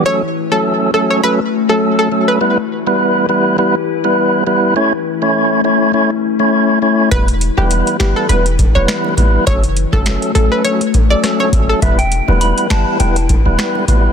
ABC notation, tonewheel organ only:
X:1
M:4/4
L:1/16
Q:"Swing 16ths" 1/4=102
K:Edor
V:1 name="Tonewheel organ"
[F,A,CA] z2 [F,A,CA]3 [F,A,CA]2 [F,A,CA] z2 [F,A,CA]3 [F,A,CA]2 | [G,B,EB] z2 [G,B,EB]3 [G,B,EB]2 [G,B,EB] z2 [G,B,EB]3 [G,B,EB]2 | [A,CEc] z2 [A,CEc]3 [A,CEc]2 [A,CEc] z2 [A,CEc]3 [A,CEc]2 | [G,B,EB] z2 [G,B,EB]3 [G,B,EB]2 [G,B,EB] z2 [G,B,EB]3 [G,B,EB]2 |
[F,A,CA] z2 [F,A,CA]3 [F,A,CA]2 [F,A,CA] z2 [F,A,CA]3 [F,A,CA]2 | [G,B,EB] z2 [G,B,EB]3 [G,B,EB]2 [G,B,EB] z2 [G,B,EB]3 [G,B,EB]2 |]